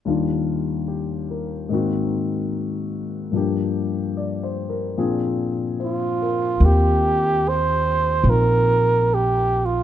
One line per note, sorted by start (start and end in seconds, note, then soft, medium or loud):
0.05 1.70 D#2 soft
0.05 1.68 D#3 soft
0.05 1.70 G3 soft
0.05 1.70 D4 soft
0.05 1.71 F4 soft
0.88 1.52 G4 soft
1.31 1.87 A#4 soft
1.69 3.33 G#2 soft
1.69 3.33 D#3 soft
1.69 3.33 A#3 soft
1.69 3.34 C4 soft
1.74 3.35 F#4 soft
3.32 4.96 G2 soft
3.32 4.96 F3 soft
3.32 4.97 A#3 soft
3.36 4.97 D4 soft
3.36 4.98 G4 soft
4.17 4.66 D5 soft
4.43 4.85 C5 soft
4.70 5.12 A#4 soft
4.98 6.62 A#2 soft
4.98 6.62 F3 soft
4.98 6.61 C4 soft
4.98 6.62 D4 soft
4.98 6.63 G#4 soft
5.80 6.67 F4 medium
5.80 6.44 C5 soft
6.22 6.79 A#4 soft
6.60 8.21 D#2 medium
6.60 9.83 A#3 soft
6.60 8.24 C4 soft
6.64 8.27 F4 soft
6.64 7.50 G4 medium
6.64 9.83 G4 soft
7.49 8.31 C5 medium
8.24 9.83 A#1 medium
8.24 9.83 C4 soft
8.24 9.83 D#4 soft
8.28 9.83 F4 soft
8.28 9.16 A#4 medium
9.14 9.67 G4 medium
9.65 9.83 F4 medium